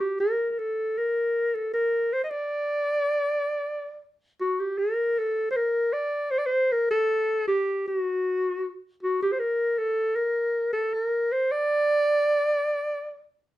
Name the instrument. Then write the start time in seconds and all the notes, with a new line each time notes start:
clarinet
0.00 G4
0.20 A#4
0.51 A#4
0.59 A4
0.98 A#4
1.54 A4
1.73 A#4
2.13 C5
2.24 D#5
2.30 D5
4.41 F#4
4.59 G4
4.78 A#4
5.18 A4
5.51 C5
5.56 A#4
5.93 D5
6.31 C5
6.38 D5
6.46 C5
6.72 A#4
6.91 A4
7.48 G4
7.88 F#4
9.03 F#4
9.22 G4
9.32 C5
9.39 A#4
9.78 A4
10.15 A#4
10.73 A4
10.94 A#4
11.32 C5
11.51 D5